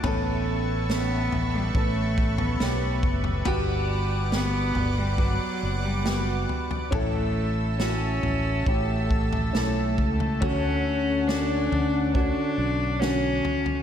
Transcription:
0.00 0.85 B3 loud
0.00 6.88 B4 medium
0.00 3.43 E5 medium
0.00 3.42 A5 medium
0.00 3.43 C#6 medium
0.00 kick loud
0.00 floor tom loud
0.04 1.29 A1 loud
0.04 1.29 A2 medium
0.04 0.86 C#4 loud
0.04 0.86 A4 loud
0.89 1.71 B3 medium
0.89 1.58 B3 loud
0.89 1.71 C#4 medium
0.89 1.72 A4 medium
0.89 snare loud
1.32 1.72 A1 medium
1.32 floor tom medium
1.56 1.78 G3 medium
1.74 2.57 A1 loud
1.74 2.41 A3 loud
1.74 2.56 B3 medium
1.74 2.57 C#4 medium
1.74 2.57 A4 medium
1.74 kick loud
2.18 kick loud
2.38 3.04 B3 medium
2.38 floor tom medium
2.60 3.01 B1 medium
2.60 3.42 B3 medium
2.60 3.43 C#4 medium
2.60 3.43 G4 medium
2.60 snare loud
3.03 3.44 F#1 medium
3.03 kick medium
3.03 floor tom medium
3.24 floor tom medium
3.45 4.71 G1 loud
3.45 4.71 G2 medium
3.45 4.28 B3 loud
3.45 4.28 F#4 loud
3.45 4.28 G4 loud
3.45 6.89 D5 medium
3.45 6.88 F#5 medium
3.45 6.88 D6 medium
3.45 kick loud
3.45 floor tom loud
4.31 5.14 B3 medium
4.31 5.01 B3 loud
4.31 5.14 F#4 medium
4.31 5.15 G4 medium
4.31 snare loud
4.75 5.37 G1 loud
4.75 floor tom medium
5.00 5.22 G3 medium
5.17 5.86 F#3 medium
5.17 6.00 B3 medium
5.17 6.01 F#4 medium
5.17 6.01 B4 medium
5.17 kick medium
5.63 6.45 F#1 medium
5.85 6.49 G3 medium
6.04 6.87 B3 medium
6.04 6.88 F#4 medium
6.04 6.88 G4 medium
6.04 snare loud
6.49 floor tom medium
6.71 floor tom medium
6.91 8.19 A1 medium
6.91 8.19 A2 medium
6.91 7.76 A3 medium
6.91 7.74 C#4 medium
6.91 7.75 E4 medium
6.91 13.83 A4 medium
6.91 7.75 A4 loud
6.91 10.38 E5 medium
6.91 13.83 A5 medium
6.91 10.38 E6 medium
6.91 kick loud
6.91 floor tom loud
7.79 8.62 C#4 medium
7.79 8.69 C#4 medium
7.79 8.62 E4 medium
7.79 8.63 F#4 medium
7.79 snare loud
8.23 8.64 A1 medium
8.23 floor tom medium
8.66 9.50 A1 medium
8.66 9.54 A3 medium
8.66 9.50 C#4 medium
8.66 9.50 E4 medium
8.66 9.51 G4 medium
8.66 kick loud
9.11 kick medium
9.33 floor tom medium
9.53 9.98 B1 medium
9.53 10.42 A3 medium
9.53 10.37 C#4 medium
9.53 10.37 E4 medium
9.53 10.38 A4 medium
9.53 snare loud
9.98 10.39 C#2 medium
9.98 kick medium
9.98 floor tom medium
10.20 floor tom medium
10.40 11.68 D2 medium
10.40 11.68 D3 medium
10.40 11.24 A3 medium
10.40 11.29 C#4 loud
10.40 11.24 C#4 medium
10.40 13.83 C#4 loud
10.40 11.24 F#4 medium
10.40 13.83 F#5 medium
10.40 kick loud
10.40 floor tom loud
11.27 12.11 A3 medium
11.27 12.14 D4 medium
11.27 12.11 F#4 medium
11.27 12.10 C#5 medium
11.27 snare loud
11.72 12.33 D2 medium
11.72 floor tom medium
12.14 12.97 D3 medium
12.14 13.01 D4 medium
12.14 12.97 F#4 medium
12.14 12.96 C#5 medium
12.14 kick loud
12.58 13.40 B1 medium
12.99 13.82 D3 medium
12.99 13.82 C#4 medium
12.99 13.83 C#4 medium
12.99 13.83 F#4 medium
12.99 snare loud
13.45 floor tom medium
13.66 floor tom medium

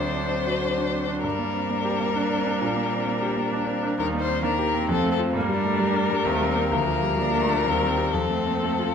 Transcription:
0.00 1.20 D2 soft
0.00 1.27 F#3 soft
0.00 0.25 C4 soft
0.00 1.20 D4 soft
0.00 1.22 C5 soft
0.16 0.32 D4 soft
0.32 0.56 C4 soft
0.47 0.72 F#4 soft
0.62 0.87 C4 soft
0.78 1.03 D4 soft
0.93 1.09 C4 soft
1.09 1.24 D4 soft
1.24 2.58 G2 soft
1.24 3.98 G3 soft
1.24 3.95 D4 soft
1.24 3.95 A#4 soft
1.39 1.64 A#3 soft
1.54 1.70 C4 soft
1.70 1.94 A#3 soft
1.85 2.10 G4 soft
2.01 2.25 A#3 soft
2.16 2.41 D4 soft
2.31 2.47 C4 soft
2.47 2.62 D4 soft
2.61 3.95 A#2 soft
2.76 3.01 A#3 soft
2.92 3.07 C4 soft
3.07 3.32 A#3 soft
3.21 3.46 G4 soft
3.37 3.62 A#3 soft
3.53 3.77 D4 soft
3.67 3.83 C4 soft
3.83 3.98 D4 soft
3.98 4.87 D#2 soft
3.98 4.44 G3 soft
3.98 4.41 D#4 soft
3.98 4.07 A#4 soft
4.13 4.38 A#3 soft
4.21 4.43 C5 medium
4.28 4.44 C4 soft
4.43 4.90 D#3 soft
4.43 4.68 A#3 soft
4.43 4.52 D4 soft
4.43 4.89 A#4 soft
4.59 4.83 G4 soft
4.67 5.34 C4 medium
4.74 4.90 A#3 soft
4.89 5.33 F2 medium
4.89 5.35 F3 medium
4.89 5.11 A4 medium
5.04 5.29 A3 soft
5.12 5.20 A4 medium
5.19 5.33 C4 soft
5.19 5.33 F4 soft
5.33 6.23 G2 soft
5.33 6.26 G3 soft
5.33 5.57 A#3 medium
5.33 6.69 A#4 medium
5.49 5.74 G3 soft
5.58 6.28 D4 medium
5.64 5.80 A3 soft
5.79 6.04 G3 soft
5.94 6.19 A#4 soft
6.10 6.26 G3 soft
6.25 6.70 D#2 medium
6.25 6.49 A3 medium
6.25 6.75 C4 medium
6.41 6.65 G3 soft
6.48 6.70 G3 medium
6.55 6.70 A#3 soft
6.55 6.70 A#4 soft
6.71 7.62 D2 medium
6.71 7.19 F3 soft
6.71 7.20 A#3 soft
6.71 8.15 A#4 medium
6.87 7.12 F3 soft
7.02 7.18 G3 soft
7.18 7.43 F3 soft
7.18 7.42 A#3 medium
7.18 7.67 D4 soft
7.34 7.59 A#4 soft
7.40 7.64 A3 medium
7.50 7.66 F3 soft
7.65 8.12 D#2 soft
7.65 8.13 G3 soft
7.65 8.13 C4 soft
7.81 8.07 G3 soft
7.98 8.12 C4 soft
7.98 8.12 G4 soft
8.12 8.95 F2 soft
8.12 8.95 F3 soft
8.12 8.95 C4 medium
8.12 8.95 A4 soft
8.30 8.56 A3 soft
8.47 8.63 A#3 soft
8.63 8.88 A3 soft
8.79 8.95 F4 soft

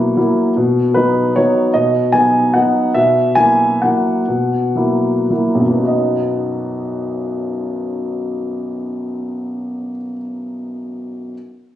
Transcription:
0.00 0.18 B2 soft
0.00 0.13 F#3 soft
0.00 0.13 A#3 soft
0.00 0.13 E4 soft
0.00 0.36 F#5 medium
0.16 0.53 F#3 soft
0.16 0.53 A#3 soft
0.16 0.53 E4 soft
0.57 0.94 B2 soft
0.94 1.32 F#3 soft
0.94 1.32 B3 soft
0.94 1.33 D#4 soft
0.94 1.35 B4 medium
1.36 1.71 F#3 soft
1.36 1.71 B3 soft
1.36 1.72 D#4 soft
1.36 1.74 C#5 medium
1.74 2.12 B2 medium
1.74 2.13 D#5 medium
2.12 2.50 F#3 soft
2.12 2.50 B3 soft
2.12 2.51 D#4 soft
2.12 2.54 G#5 medium
2.54 2.90 F#3 soft
2.54 2.91 B3 soft
2.54 2.91 D#4 soft
2.54 2.94 F#5 medium
2.94 3.35 B2 soft
2.94 3.36 E5 medium
3.35 3.78 F#3 soft
3.35 3.78 A#3 soft
3.35 3.78 E4 soft
3.35 3.81 G#5 medium
3.82 4.24 F#3 soft
3.82 4.24 A#3 soft
3.82 4.25 E4 soft
3.82 5.60 F#5 medium
4.28 4.74 B2 soft
4.75 5.26 F#3 soft
4.75 5.26 A#3 soft
4.75 5.26 E4 soft
5.30 5.64 F#3 soft
5.30 5.85 A#3 soft
5.30 5.85 E4 soft
5.55 9.89 B1 soft
5.61 9.95 F#2 soft
5.66 10.00 F#3 soft
5.71 10.05 B3 soft
5.77 10.12 D#4 soft
5.83 10.17 F#4 soft
5.83 10.21 D#5 soft

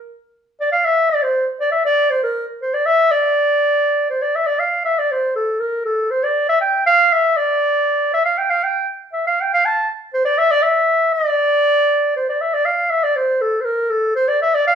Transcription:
0.60 0.71 D5 medium
0.72 0.86 F5 medium
0.85 1.11 E5 medium
1.10 1.24 D5 medium
1.23 1.48 C5 medium
1.60 1.71 D5 medium
1.71 1.84 E5 medium
1.85 2.12 D5 loud
2.10 2.23 C5 loud
2.23 2.46 A#4 medium
2.62 2.75 C5 medium
2.73 2.87 D5 medium
2.86 3.13 E5 loud
3.11 4.09 D5 loud
4.10 4.23 C5 medium
4.22 4.37 D5 medium
4.35 4.48 E5 medium
4.46 4.61 D5 medium
4.59 4.84 F5 medium
4.85 5.00 E5 medium
4.98 5.13 D5 medium
5.11 5.35 C5 medium
5.35 5.61 A4 medium
5.60 5.85 A#4 medium
5.85 6.12 A4 medium
6.10 6.25 C5 medium
6.24 6.48 D5 medium
6.49 6.60 E5 loud
6.61 6.84 G5 medium
6.86 7.14 F5 loud
7.12 7.38 E5 loud
7.37 8.12 D5 loud
8.13 8.24 E5 loud
8.25 8.40 F5 medium
8.38 8.51 G5 medium
8.50 8.65 F5 medium
8.63 8.88 G5 medium
9.13 9.24 E5 medium
9.27 9.43 F5 medium
9.41 9.52 G5 medium
9.54 9.67 F5 medium
9.65 9.89 A5 medium
10.13 10.24 C5 medium
10.25 10.39 D5 loud
10.38 10.52 E5 loud
10.51 10.64 D5 loud
10.62 11.14 E5 medium
11.13 12.15 D5 loud
12.16 12.28 C5 medium
12.29 12.43 D5 medium
12.41 12.55 E5 medium
12.54 12.67 D5 medium
12.65 12.92 F5 medium
12.90 13.05 E5 loud
13.03 13.18 D5 medium
13.16 13.43 C5 medium
13.41 13.62 A4 medium
13.61 13.66 C5 medium
13.65 13.91 A#4 medium
13.90 14.14 A4 medium
14.15 14.29 C5 loud
14.28 14.41 D5 medium
14.42 14.56 E5 medium
14.54 14.67 D5 loud
14.67 14.75 F5 loud

